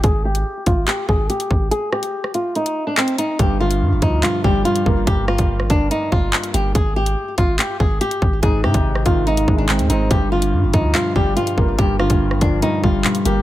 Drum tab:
HH |x--x--x-x---xx--|x--x--x-xx--xxx-|x--x--x-x---xx--|x--x--x-x---xxx-|
CP |--------x-------|------------x---|--------x-------|------------x---|
SD |----------------|--r--r----------|----------------|--r--r----------|
BD |o-----o---o---o-|----------------|o-----o---o---o-|o--o--o---o-----|

HH |x--x--x-x---xx--|x--x--x-xx--xxx-|x--x--x-x---xx--|x--x--x-x---xxx-|
CP |--------x-------|------------x---|--------x-------|------------x---|
SD |----------------|--r--r----------|----------------|--r--r----------|
BD |o-----o---o---o-|o--o--o---o-----|o-----o---o---o-|o--o--o---o-----|